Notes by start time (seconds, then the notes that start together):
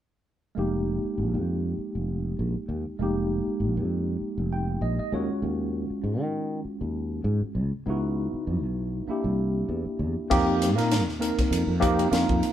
0.55 F1 G#3 A#3 D#4 G4
1.05 muted fretless electric bass stroke
1.18 A#1
1.34 F2
1.78 muted fretless electric bass stroke
1.95 F1
2.39 A#1
2.55 muted fretless electric bass stroke
2.69 D#2
2.99 F1 G#3 A#3 D#4 G4
3.47 muted fretless electric bass stroke
3.60 A#1
3.77 F2
4.21 muted fretless electric bass stroke
4.38 F1
4.53 G5
4.81 A#1 D#5
4.98 D#5, muted fretless electric bass stroke
5.12 D#2 G#3 C#4 F4 F#4 C#5
5.42 D#2
5.90 muted fretless electric bass stroke
6.04 G#2
6.21 D#3
6.65 muted fretless electric bass stroke
6.81 D#2
7.24 G#2
7.42 muted fretless electric bass stroke
7.55 C#2
7.86 C#2 B3 D#4 E4
7.90 F#4
8.33 muted fretless electric bass stroke
8.47 F#2
8.63 B1
9.08 A#3 D4 E4 G4, muted fretless electric bass stroke
9.24 C2
9.69 E2
9.85 muted fretless electric bass stroke
9.99 E2
10.30 F2 A#3 C4 D#4 G4, kick, crash
10.62 snare, hi-hat pedal, ride
10.76 A#2 A#3 C4 D#4 A#4, snare, ride
10.91 snare, hi-hat pedal, ride
11.06 D#2 F4, snare
11.19 A#3 C4 D#4 A#4, hi-hat pedal, ride
11.38 muted fretless electric bass stroke, kick, snare, ride
11.51 F2, hi-hat pedal, ride
11.67 F2
11.80 A#3 C4 D#4 G4, kick, hi-hat pedal, ride
11.99 ride
12.11 F2 A#3 C4 D#4 F4, snare, hi-hat pedal, ride
12.29 F2, kick
12.43 hi-hat pedal, ride